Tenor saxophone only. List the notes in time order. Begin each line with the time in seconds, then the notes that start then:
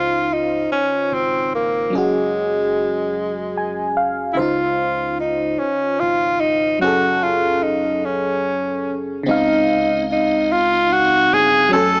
Already playing: F4
0.33 D#4
0.72 C#4
1.14 C4
1.55 A#3
1.96 G#3
4.33 E4
4.39 F4
5.20 D#4
5.59 C#4
6.00 F4
6.40 D#4
6.81 F#4
7.23 F4
7.63 D#4
8.05 C#4
9.28 D#4
10.12 D#4
10.52 F4
10.93 F#4
11.34 G#4
11.73 A4